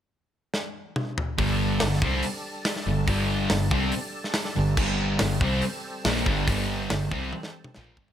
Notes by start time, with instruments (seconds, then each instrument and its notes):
0.54 snare
0.96 mid tom
1.18 floor tom
1.38 picked electric bass G1, distorted electric guitar G2 D3 G3, tonewheel organ G3 D4 A4, kick, open hi-hat
1.80 picked electric bass G1, distorted electric guitar G2 D3, snare, open hi-hat
2.02 picked electric bass C2, distorted electric guitar C3 G3 C4, kick
2.23 open hi-hat
2.65 snare, open hi-hat
2.76 snare
2.87 picked electric bass G1, distorted electric guitar G2 D3
3.07 picked electric bass G1, distorted electric guitar G2 D3 G3, kick, open hi-hat
3.50 picked electric bass G1, distorted electric guitar G2 D3, snare, open hi-hat
3.70 picked electric bass C2, distorted electric guitar C3 G3 C4, kick
3.92 open hi-hat
4.24 snare
4.34 snare, open hi-hat
4.45 snare
4.56 picked electric bass G1, distorted electric guitar G2 D3
4.77 picked electric bass G1, distorted electric guitar G2 D3 G3, tonewheel organ C4, kick, crash
5.19 picked electric bass G1, distorted electric guitar G2 D3, snare, open hi-hat
5.41 picked electric bass C2, distorted electric guitar C3 G3 C4, kick
5.62 open hi-hat
6.05 picked electric bass A#1, distorted electric guitar A#2 F3 A#3, snare, open hi-hat
6.16 snare
6.26 picked electric bass G1, distorted electric guitar G2 D3 G3, kick
6.47 picked electric bass G1, distorted electric guitar G2 D3 G3, kick, open hi-hat
6.90 picked electric bass G1, distorted electric guitar G2 D3, snare, open hi-hat
7.11 picked electric bass C2, distorted electric guitar C3 G3 C4, kick
7.33 high tom
7.43 snare
7.64 mid tom
7.74 picked electric bass A#1, distorted electric guitar A#2 F3 A#3, snare
7.97 picked electric bass G1, distorted electric guitar G2 D3 G3, kick
8.08 floor tom